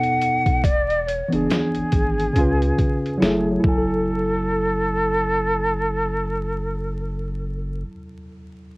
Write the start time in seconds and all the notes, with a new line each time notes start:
Already playing: B2 B3 D#4 A4 F#5
0.03 closed hi-hat
0.22 closed hi-hat
0.46 kick, closed hi-hat
0.64 E1 D5, kick, closed hi-hat
0.90 closed hi-hat
1.07 C#5, closed hi-hat
1.29 E3 B3, closed hi-hat
1.33 F#1 D4 G#4
1.51 snare, closed hi-hat
1.75 G#1, closed hi-hat
1.92 G#1, kick, closed hi-hat
2.20 closed hi-hat
2.33 C#2 C#3 C#4, kick, closed hi-hat
2.38 F4 B4
2.62 closed hi-hat
2.78 kick, closed hi-hat
3.06 closed hi-hat
3.18 F#1 F#3 E4
3.22 A3 G#4, snare, closed hi-hat
3.51 F#3
3.60 E4
3.64 F#1 A4, kick
3.69 G#5
3.78 A4